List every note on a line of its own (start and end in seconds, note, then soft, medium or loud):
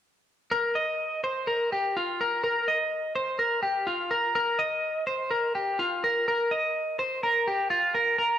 0.51 0.75 A#4 medium
0.75 1.20 D#5 medium
1.24 1.47 C5 medium
1.47 1.71 A#4 medium
1.72 1.96 G4 medium
1.97 2.20 F4 medium
2.21 2.42 A#4 medium
2.44 2.67 A#4 medium
2.68 3.12 D#5 medium
3.16 3.39 C5 medium
3.39 3.62 A#4 medium
3.63 3.87 G4 medium
3.87 4.11 F4 medium
4.11 4.34 A#4 medium
4.35 4.59 A#4 medium
4.59 5.04 D#5 medium
5.07 5.31 C5 medium
5.31 5.55 A#4 medium
5.55 5.79 G4 medium
5.79 6.03 F4 medium
6.04 6.27 A#4 medium
6.28 6.51 A#4 medium
6.51 6.96 D#5 medium
6.99 7.23 C5 medium
7.23 7.47 A#4 medium
7.48 7.70 G4 medium
7.70 7.94 F4 medium
7.95 8.17 A#4 medium
8.18 8.39 A#4 medium